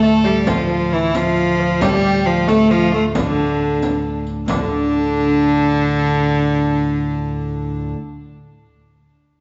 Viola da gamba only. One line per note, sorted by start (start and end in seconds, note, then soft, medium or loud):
0.00 0.27 A3 medium
0.25 0.49 G3 medium
0.48 0.95 F3 medium
0.93 1.17 E3 loud
1.16 1.83 F3 loud
1.81 2.27 G3 loud
2.26 2.50 F3 loud
2.48 2.72 A3 medium
2.71 2.93 F3 medium
2.94 3.03 A3 medium
3.15 4.22 D3 medium
4.48 7.91 D3 medium